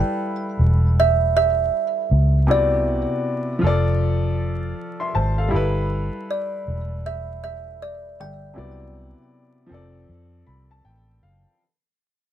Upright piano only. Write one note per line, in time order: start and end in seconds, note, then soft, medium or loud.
0.00 2.43 G3 medium
0.00 2.44 E4 medium
0.00 2.45 A4 medium
0.00 2.46 B4 medium
0.00 2.50 F5 medium
2.47 3.62 C3 medium
2.47 3.62 B3 medium
2.47 3.63 E4 medium
2.47 3.63 F#4 medium
2.47 3.64 D5 medium
3.59 5.47 F3 medium
3.59 5.48 F4 medium
3.64 4.75 A4 medium
3.64 4.76 D5 loud
5.00 5.14 E5 medium
5.00 5.13 C6 medium
5.15 5.37 C5 medium
5.15 5.37 A5 medium
5.38 5.52 A4 medium
5.38 5.74 F5 medium
5.48 8.50 G3 medium
5.48 8.51 E4 medium
5.53 8.53 A4 medium
5.53 8.54 B4 loud
8.54 9.69 C3 medium
8.54 9.70 F#3 medium
8.54 9.69 B3 medium
8.54 9.70 E4 medium
8.58 9.71 D5 medium
9.67 11.54 F3 medium
9.67 11.56 C4 medium
9.72 11.57 A4 medium
9.72 11.58 D5 medium
10.46 10.69 B5 medium
10.71 10.83 A5 medium
10.85 11.20 G5 medium
11.23 11.58 F5 medium